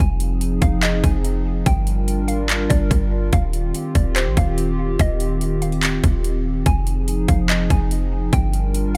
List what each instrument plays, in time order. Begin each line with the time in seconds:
0.00 808-style bass F1, analog synth pad F3 C4 D#4 G#4, synth pluck G#5
0.20 closed hi-hat
0.41 closed hi-hat
0.62 808-style bass F1, synth pluck F5, kick, closed hi-hat
0.83 synth pluck D#5, clap, closed hi-hat
1.04 808-style bass F1, synth pluck G#5, kick, closed hi-hat
1.25 closed hi-hat
1.66 808-style bass G1, analog synth pad G3 D4 F4 A#4, synth pluck G5, kick, closed hi-hat
1.87 closed hi-hat
2.08 closed hi-hat
2.18 808-style bass G#1
2.28 synth pluck F5, closed hi-hat
2.49 clap, closed hi-hat
2.70 808-style bass G1, synth pluck D5, kick, closed hi-hat
2.91 808-style bass G1, kick, closed hi-hat
3.33 808-style bass D#1, analog synth pad D#3 C4 F4 G4, synth pluck F5, kick, closed hi-hat
3.53 closed hi-hat
3.74 closed hi-hat
3.95 808-style bass D#1, synth pluck D5, kick, closed hi-hat
4.16 synth pluck C5, clap, closed hi-hat
4.26 808-style bass A#1
4.37 808-style bass D#1, synth pluck F5, kick, closed hi-hat
4.58 closed hi-hat
4.99 808-style bass D#1, synth pluck D#5, kick, closed hi-hat
5.20 closed hi-hat
5.41 closed hi-hat
5.62 synth pluck F5, closed hi-hat
5.72 closed hi-hat
5.83 clap, closed hi-hat
6.04 808-style bass D#1, kick, closed hi-hat
6.24 closed hi-hat
6.66 808-style bass F1, analog synth pad F3 D#4 G#4, synth pluck G#5, kick, closed hi-hat
6.87 closed hi-hat
7.08 closed hi-hat
7.28 808-style bass F1, synth pluck F5, kick, closed hi-hat
7.49 synth pluck D#5, clap, closed hi-hat
7.70 808-style bass F1, synth pluck G#5, kick, closed hi-hat
7.91 closed hi-hat
8.33 808-style bass G1, analog synth pad G3 D4 F4 A#4, synth pluck G5, kick, closed hi-hat
8.53 closed hi-hat
8.74 closed hi-hat
8.85 808-style bass G#1